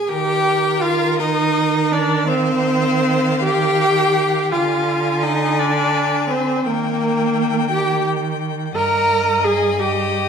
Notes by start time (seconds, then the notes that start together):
Already playing: G#5
0.08 D#3 G4 A#4 G5
0.81 F4 F5
1.18 D#4 D#5
1.92 D4 D5
2.28 C4 C5 F5
3.43 G4 G5
4.51 D3 F4 F5 G#5
5.23 D#4 D#5
5.59 D4 D5
6.30 C4 C5
6.65 D#3 A#3 A#4 G5
7.70 G4 G5
8.75 G2 A#4 D#5 A#5
9.45 G#4 G#5
9.79 G4 D#5 G5